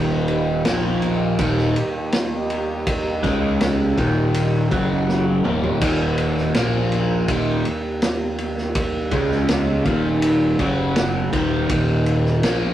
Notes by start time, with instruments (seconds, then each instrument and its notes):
Already playing: fingered electric bass D#1, overdriven electric guitar D#2 A#2 D#3, synth drone D#2, tonewheel organ D#3 G3 A#3 G4 A#4
0.28 ride
0.65 fingered electric bass A#1, overdriven electric guitar A#2 F3 A#3, tonewheel organ A#3 F4 A#4, snare, ride
1.02 ride
1.39 fingered electric bass D#1, overdriven electric guitar D#2 A#2 D#3, tonewheel organ D#3 G3 G4, kick, ride
1.58 snare
1.76 ride
2.12 snare, ride
2.50 ride
2.87 kick, ride
3.23 fingered electric bass C#2, overdriven electric guitar C#3 G#3 C#4, tonewheel organ G#3 C#4 G#4, kick, snare, ride
3.61 snare, ride
3.97 fingered electric bass D#1, overdriven electric guitar D#2 A#2 D#3, tonewheel organ D#3 G3 A#3 G4 A#4, kick, ride
4.34 ride
4.71 fingered electric bass F#1, overdriven electric guitar F#2 C#3 F#3, tonewheel organ C#3 F#3 C#4 F#4 F#5, kick, ride
5.09 snare
5.44 fingered electric bass D#1, overdriven electric guitar D#2 A#2 D#3, tonewheel organ D#3 G3 A#3 G4 A#4, mid tom
5.63 floor tom
5.81 fingered electric bass D#1, overdriven electric guitar D#2 A#2 D#3, synth drone D#2, kick, crash, ride
6.18 ride
6.37 snare
6.54 fingered electric bass A#1, overdriven electric guitar A#2 F3 A#3, tonewheel organ A#3 F4, snare, ride
6.92 ride
7.27 fingered electric bass D#1, overdriven electric guitar D#2 A#2 D#3, tonewheel organ D#3 G3 G4, kick, ride
7.65 ride
8.02 snare, ride
8.38 ride
8.57 snare
8.75 kick, ride
9.11 fingered electric bass C#2, overdriven electric guitar C#3 G#3 C#4, tonewheel organ G#3 C#4 G#4, kick, ride
9.31 snare
9.48 snare, ride
9.85 fingered electric bass D#1, overdriven electric guitar D#2 A#2 D#3, tonewheel organ D#3 G3 A#3 G4 A#4, kick, ride
10.22 ride
10.58 fingered electric bass F#1, overdriven electric guitar F#2 C#3 F#3, tonewheel organ C#3 F#3 C#4 F#4 F#5, kick, ride
10.96 snare, ride
11.32 fingered electric bass D#1, overdriven electric guitar D#2 A#2 D#3, tonewheel organ D#3 G3 A#3 G4 A#4, kick, ride
11.69 fingered electric bass D#1, overdriven electric guitar D#2 A#2 D#3, kick, ride
12.06 ride
12.26 snare
12.42 fingered electric bass A#1, overdriven electric guitar A#2 F3 A#3, tonewheel organ F4, snare, ride